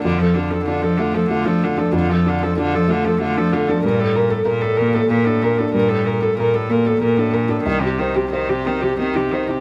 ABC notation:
X:1
M:6/8
L:1/16
Q:3/8=63
K:Gm
V:1 name="Viola"
F A F A F A F A F A F A | F A F A F A F A F A F A | B A B A B A B A B A B A | B A B A B A B A B A B A |
E G E G E G E G E G E G |]
V:2 name="Felt piano"
F,, A D A D A A, A A, D A D | F,, A D A D A A, A A, D A D | G,, A B A B A B, A B, D B D | G,, A B A B A B, A B, D B D |
C,, G c G c G C G C E c E |]
V:3 name="Cello" clef=bass
D, F, D, F, D, F, D, F, D, F, D, F, | D, F, D, F, D, F, D, F, D, F, D, F, | B,, A,, B,, A,, B,, A,, B,, A,, B,, A,, B,, A,, | B,, A,, B,, A,, B,, A,, B,, A,, B,, A,, B,, A,, |
E, C, E, C, E, C, E, C, E, C, E, C, |]